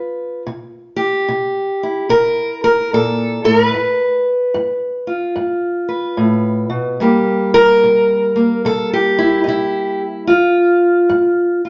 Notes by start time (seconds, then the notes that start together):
Already playing: G2 F4 B4
0.47 C3
0.96 G4
1.28 C3
1.83 E4
2.09 C3 A#4
2.64 A#4
2.93 A#2 A4
3.44 A2 A#4
3.65 B4
3.74 G2
4.54 G2
5.07 F4
5.36 G2
5.89 B4
6.17 A2
6.70 B2
7.00 C3 G3 A#3 G4
7.54 A#4
7.83 C3
8.36 A#3
8.65 C3 A4
8.93 G4
9.19 E4
9.44 C3 D#4
9.48 E4
10.27 G2 F4
11.09 G2
11.65 F4